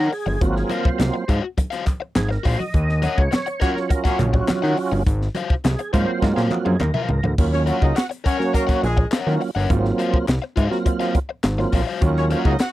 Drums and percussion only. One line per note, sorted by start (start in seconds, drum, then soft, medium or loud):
0.12 open hi-hat medium
0.27 high conga medium
0.41 kick loud
0.41 closed hi-hat medium
0.56 snare soft
0.70 closed hi-hat medium
0.70 muted conga medium
0.85 kick loud
1.00 snare loud
1.00 clap medium
1.00 closed hi-hat loud
1.00 high conga medium
1.29 kick loud
1.29 closed hi-hat medium
1.29 muted conga soft
1.58 kick medium
1.58 closed hi-hat loud
1.58 muted conga medium
1.72 snare soft
1.72 closed hi-hat medium
1.86 kick medium
1.86 clap medium
1.86 closed hi-hat medium
1.86 muted conga medium
2.16 snare loud
2.16 clap loud
2.16 closed hi-hat medium
2.16 high conga medium
2.31 snare soft
2.45 kick medium
2.45 open hi-hat medium
2.60 high conga medium
2.74 kick loud
2.74 closed hi-hat medium
2.89 snare soft
3.03 closed hi-hat medium
3.03 muted conga medium
3.18 kick loud
3.32 snare loud
3.32 clap medium
3.32 closed hi-hat medium
3.32 high conga medium
3.47 closed hi-hat medium
3.61 kick loud
3.61 closed hi-hat medium
3.61 muted conga soft
3.77 snare soft
3.90 kick medium
3.90 closed hi-hat medium
3.90 muted conga medium
4.05 kick loud
4.05 snare soft
4.05 closed hi-hat medium
4.19 clap medium
4.19 closed hi-hat medium
4.19 muted conga medium
4.19 low conga medium
4.34 kick loud
4.48 snare loud
4.48 clap loud
4.48 closed hi-hat medium
4.48 high conga loud
4.64 snare soft
4.77 open hi-hat medium
4.93 high conga medium
5.07 kick loud
5.07 closed hi-hat loud
5.22 snare soft
5.35 closed hi-hat medium
5.35 muted conga medium
5.50 kick loud
5.64 snare loud
5.64 clap medium
5.64 closed hi-hat loud
5.64 high conga medium
5.79 closed hi-hat medium
5.94 kick loud
5.94 closed hi-hat medium
6.22 kick medium
6.22 snare medium
6.22 muted conga medium
6.37 snare medium
6.51 clap medium
6.51 high tom medium
6.51 muted conga medium
6.66 high tom medium
6.80 clap loud
6.80 mid tom medium
6.80 high conga medium
6.94 mid tom medium
6.94 high conga medium
7.09 floor tom loud
7.24 floor tom medium
7.24 high conga medium
7.38 kick loud
7.38 crash loud
7.53 snare soft
7.67 closed hi-hat medium
7.82 kick loud
7.97 snare loud
7.97 clap medium
7.97 closed hi-hat medium
8.11 closed hi-hat medium
8.26 kick loud
8.26 closed hi-hat medium
8.41 snare soft
8.54 kick medium
8.54 closed hi-hat loud
8.69 kick loud
8.69 snare soft
8.69 closed hi-hat medium
8.84 closed hi-hat medium
8.97 kick loud
9.12 snare loud
9.12 clap loud
9.12 closed hi-hat medium
9.28 snare soft
9.41 open hi-hat medium
9.70 kick loud
9.70 closed hi-hat medium
9.85 snare soft
9.99 closed hi-hat medium
10.14 kick loud
10.28 snare loud
10.28 clap medium
10.28 closed hi-hat medium
10.57 kick medium
10.57 closed hi-hat medium
10.72 snare soft
10.86 kick loud
10.86 closed hi-hat loud
11.00 snare soft
11.00 closed hi-hat medium
11.15 kick medium
11.15 closed hi-hat medium
11.44 snare loud
11.44 clap loud
11.44 closed hi-hat medium
11.59 snare soft
11.72 kick medium
11.72 open hi-hat medium
12.02 kick loud
12.02 closed hi-hat medium
12.17 snare soft
12.31 closed hi-hat medium
12.45 kick loud
12.59 snare loud
12.59 clap medium
12.59 closed hi-hat loud